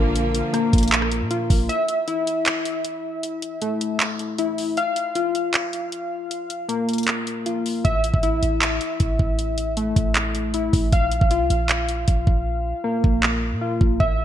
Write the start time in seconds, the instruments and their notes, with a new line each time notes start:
Already playing: 808-style bass A#1, string section D3 F3 A#3, synth keys F4 F5
0.16 closed hi-hat
0.35 closed hi-hat
0.53 synth keys A#3, cross-stick, closed hi-hat
0.73 808-style bass A#1, kick, closed hi-hat
0.78 closed hi-hat
0.83 closed hi-hat
0.88 closed hi-hat
0.92 clap, closed hi-hat
1.02 cross-stick
1.12 closed hi-hat
1.21 808-style bass A#2
1.31 synth keys F4, closed hi-hat
1.50 808-style bass A#1, kick, open hi-hat
1.69 synth keys E5, closed hi-hat
1.88 closed hi-hat
2.08 synth keys E4, closed hi-hat
2.27 closed hi-hat
2.46 clap, closed hi-hat
2.65 closed hi-hat
2.85 closed hi-hat
3.23 closed hi-hat
3.42 closed hi-hat
3.62 synth keys A3, closed hi-hat
3.81 closed hi-hat
4.00 clap, closed hi-hat
4.19 closed hi-hat
4.38 synth keys E4, closed hi-hat
4.58 open hi-hat
4.77 synth keys F5, closed hi-hat
4.96 closed hi-hat
5.15 synth keys F4, closed hi-hat
5.35 closed hi-hat
5.54 clap, closed hi-hat
5.73 closed hi-hat
5.92 closed hi-hat
6.31 closed hi-hat
6.50 closed hi-hat
6.69 synth keys A#3, closed hi-hat
6.89 closed hi-hat
6.93 closed hi-hat
6.98 closed hi-hat
7.03 closed hi-hat
7.07 clap, closed hi-hat
7.27 closed hi-hat
7.46 synth keys F4, closed hi-hat
7.66 open hi-hat
7.85 808-style bass A1, synth keys E5, kick, closed hi-hat
8.04 closed hi-hat
8.14 808-style bass A1, kick
8.23 synth keys E4, closed hi-hat
8.42 808-style bass A1, closed hi-hat
8.61 clap, closed hi-hat
8.81 closed hi-hat
9.00 808-style bass A1, kick, closed hi-hat
9.19 808-style bass A1, kick
9.39 closed hi-hat
9.58 closed hi-hat
9.77 synth keys A3, closed hi-hat
9.96 808-style bass A1, kick, closed hi-hat
10.15 clap, closed hi-hat
10.35 closed hi-hat
10.54 synth keys E4, closed hi-hat
10.73 808-style bass A1, kick, open hi-hat
10.92 808-style bass A#1, synth keys F5, kick, closed hi-hat
11.12 closed hi-hat
11.21 808-style bass A#1, kick
11.31 synth keys F4, closed hi-hat
11.40 808-style bass C2
11.50 808-style bass A#1, closed hi-hat
11.69 clap, closed hi-hat
11.89 closed hi-hat
12.08 808-style bass A#1, kick, closed hi-hat
12.27 808-style bass A#1, kick
12.84 synth keys A#3
13.04 808-style bass A#1, kick
13.23 clap
13.52 808-style bass A#2
13.61 synth keys F4
13.81 808-style bass A#1, kick
14.00 808-style bass A1, synth keys E5, kick